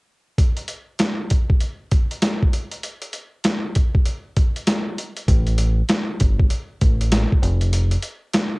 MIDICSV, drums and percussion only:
0, 0, Header, 1, 2, 480
1, 0, Start_track
1, 0, Tempo, 612245
1, 299, Time_signature, 4, 2, 24, 8
1, 6736, End_track
2, 0, Start_track
2, 0, Title_t, "Drums"
2, 300, Note_on_c, 9, 36, 106
2, 301, Note_on_c, 9, 42, 79
2, 378, Note_off_c, 9, 36, 0
2, 380, Note_off_c, 9, 42, 0
2, 444, Note_on_c, 9, 42, 47
2, 523, Note_off_c, 9, 42, 0
2, 532, Note_on_c, 9, 42, 78
2, 611, Note_off_c, 9, 42, 0
2, 776, Note_on_c, 9, 42, 79
2, 782, Note_on_c, 9, 40, 88
2, 786, Note_on_c, 9, 38, 110
2, 854, Note_off_c, 9, 42, 0
2, 861, Note_off_c, 9, 40, 0
2, 865, Note_off_c, 9, 38, 0
2, 1020, Note_on_c, 9, 42, 74
2, 1028, Note_on_c, 9, 36, 85
2, 1099, Note_off_c, 9, 42, 0
2, 1106, Note_off_c, 9, 36, 0
2, 1174, Note_on_c, 9, 36, 94
2, 1252, Note_off_c, 9, 36, 0
2, 1258, Note_on_c, 9, 42, 73
2, 1337, Note_off_c, 9, 42, 0
2, 1501, Note_on_c, 9, 42, 60
2, 1504, Note_on_c, 9, 36, 96
2, 1580, Note_off_c, 9, 42, 0
2, 1583, Note_off_c, 9, 36, 0
2, 1655, Note_on_c, 9, 42, 56
2, 1733, Note_off_c, 9, 42, 0
2, 1740, Note_on_c, 9, 42, 94
2, 1743, Note_on_c, 9, 40, 91
2, 1747, Note_on_c, 9, 38, 114
2, 1819, Note_off_c, 9, 42, 0
2, 1821, Note_off_c, 9, 40, 0
2, 1826, Note_off_c, 9, 38, 0
2, 1902, Note_on_c, 9, 36, 89
2, 1981, Note_off_c, 9, 36, 0
2, 1986, Note_on_c, 9, 42, 70
2, 2064, Note_off_c, 9, 42, 0
2, 2129, Note_on_c, 9, 42, 51
2, 2207, Note_off_c, 9, 42, 0
2, 2222, Note_on_c, 9, 42, 84
2, 2300, Note_off_c, 9, 42, 0
2, 2365, Note_on_c, 9, 42, 48
2, 2444, Note_off_c, 9, 42, 0
2, 2454, Note_on_c, 9, 42, 75
2, 2533, Note_off_c, 9, 42, 0
2, 2697, Note_on_c, 9, 42, 80
2, 2703, Note_on_c, 9, 40, 90
2, 2707, Note_on_c, 9, 38, 109
2, 2775, Note_off_c, 9, 42, 0
2, 2781, Note_off_c, 9, 40, 0
2, 2786, Note_off_c, 9, 38, 0
2, 2941, Note_on_c, 9, 42, 76
2, 2949, Note_on_c, 9, 36, 86
2, 3020, Note_off_c, 9, 42, 0
2, 3027, Note_off_c, 9, 36, 0
2, 3095, Note_on_c, 9, 36, 93
2, 3173, Note_off_c, 9, 36, 0
2, 3180, Note_on_c, 9, 42, 75
2, 3258, Note_off_c, 9, 42, 0
2, 3423, Note_on_c, 9, 42, 64
2, 3425, Note_on_c, 9, 36, 100
2, 3501, Note_off_c, 9, 42, 0
2, 3503, Note_off_c, 9, 36, 0
2, 3576, Note_on_c, 9, 42, 55
2, 3654, Note_off_c, 9, 42, 0
2, 3661, Note_on_c, 9, 42, 98
2, 3664, Note_on_c, 9, 40, 93
2, 3668, Note_on_c, 9, 38, 116
2, 3740, Note_off_c, 9, 42, 0
2, 3742, Note_off_c, 9, 40, 0
2, 3746, Note_off_c, 9, 38, 0
2, 3907, Note_on_c, 9, 42, 73
2, 3985, Note_off_c, 9, 42, 0
2, 4050, Note_on_c, 9, 42, 53
2, 4129, Note_off_c, 9, 42, 0
2, 4140, Note_on_c, 9, 36, 109
2, 4142, Note_on_c, 9, 42, 86
2, 4219, Note_off_c, 9, 36, 0
2, 4220, Note_off_c, 9, 42, 0
2, 4286, Note_on_c, 9, 42, 50
2, 4364, Note_off_c, 9, 42, 0
2, 4374, Note_on_c, 9, 42, 79
2, 4452, Note_off_c, 9, 42, 0
2, 4616, Note_on_c, 9, 42, 80
2, 4622, Note_on_c, 9, 40, 93
2, 4626, Note_on_c, 9, 38, 117
2, 4694, Note_off_c, 9, 42, 0
2, 4700, Note_off_c, 9, 40, 0
2, 4704, Note_off_c, 9, 38, 0
2, 4861, Note_on_c, 9, 42, 75
2, 4868, Note_on_c, 9, 36, 88
2, 4939, Note_off_c, 9, 42, 0
2, 4946, Note_off_c, 9, 36, 0
2, 5014, Note_on_c, 9, 36, 100
2, 5092, Note_off_c, 9, 36, 0
2, 5097, Note_on_c, 9, 42, 76
2, 5176, Note_off_c, 9, 42, 0
2, 5341, Note_on_c, 9, 42, 62
2, 5344, Note_on_c, 9, 36, 98
2, 5420, Note_off_c, 9, 42, 0
2, 5422, Note_off_c, 9, 36, 0
2, 5495, Note_on_c, 9, 42, 56
2, 5573, Note_off_c, 9, 42, 0
2, 5580, Note_on_c, 9, 42, 95
2, 5582, Note_on_c, 9, 40, 95
2, 5587, Note_on_c, 9, 38, 116
2, 5658, Note_off_c, 9, 42, 0
2, 5661, Note_off_c, 9, 40, 0
2, 5665, Note_off_c, 9, 38, 0
2, 5741, Note_on_c, 9, 36, 87
2, 5820, Note_off_c, 9, 36, 0
2, 5825, Note_on_c, 9, 42, 72
2, 5904, Note_off_c, 9, 42, 0
2, 5967, Note_on_c, 9, 42, 54
2, 6045, Note_off_c, 9, 42, 0
2, 6060, Note_on_c, 9, 42, 86
2, 6138, Note_off_c, 9, 42, 0
2, 6204, Note_on_c, 9, 42, 47
2, 6282, Note_off_c, 9, 42, 0
2, 6292, Note_on_c, 9, 42, 78
2, 6370, Note_off_c, 9, 42, 0
2, 6535, Note_on_c, 9, 42, 80
2, 6541, Note_on_c, 9, 40, 93
2, 6545, Note_on_c, 9, 38, 116
2, 6614, Note_off_c, 9, 42, 0
2, 6620, Note_off_c, 9, 40, 0
2, 6624, Note_off_c, 9, 38, 0
2, 6736, End_track
0, 0, End_of_file